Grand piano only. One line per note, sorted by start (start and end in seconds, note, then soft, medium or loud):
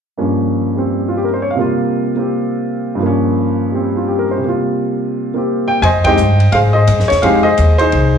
0.18 1.59 G2 soft
0.18 1.59 F3 soft
0.18 1.57 A#3 soft
0.18 1.60 C#4 soft
0.76 1.56 G3 soft
0.76 1.60 C4 soft
1.08 1.18 F4 soft
1.17 1.28 G4 soft
1.24 1.39 A#4 soft
1.33 1.47 C5 soft
1.42 1.53 C#5 soft
1.50 1.62 F5 soft
1.55 2.98 C3 soft
1.55 3.00 G3 soft
1.55 2.15 A#3 soft
1.60 3.01 F4 medium
2.16 3.00 A#3 soft
2.16 3.01 C4 soft
2.16 3.02 G4 soft
2.95 4.39 G2 soft
2.95 4.41 F3 soft
3.03 4.43 A#3 soft
3.03 4.44 C#4 medium
3.72 4.40 G3 soft
3.72 4.44 C4 soft
3.97 4.13 F4 soft
4.08 4.28 G4 soft
4.19 4.36 A#4 soft
4.31 4.48 C5 soft
4.38 5.81 C3 soft
4.38 5.83 G3 soft
4.45 5.32 A#3 soft
4.45 5.86 F4 soft
5.34 5.82 A#3 soft
5.34 5.83 C4 soft
5.34 5.84 G4 soft
5.68 5.82 G5 medium
5.82 6.05 C5 medium
5.82 6.05 D#5 medium
5.82 5.87 G#5 medium
6.04 6.17 G#3 medium
6.04 6.18 C4 soft
6.04 6.18 D#4 medium
6.04 6.18 G4 medium
6.04 6.53 C5 medium
6.04 6.72 D#5 medium
6.04 6.54 G5 loud
6.52 6.74 G#4 medium
6.52 6.74 C5 medium
6.52 6.57 F5 medium
6.73 7.22 G#4 medium
6.73 7.22 C5 medium
6.73 7.10 D#5 medium
7.08 7.23 C#5 medium
7.22 7.43 G#3 medium
7.22 7.44 C4 medium
7.22 7.44 D#4 medium
7.22 7.44 G4 medium
7.22 7.43 G#4 medium
7.22 7.44 C5 medium
7.22 7.45 F5 medium
7.43 7.79 G#4 medium
7.43 7.77 C5 medium
7.43 7.77 D#5 medium
7.78 8.18 D#4 medium
7.78 8.18 G#4 medium
7.78 8.18 C5 loud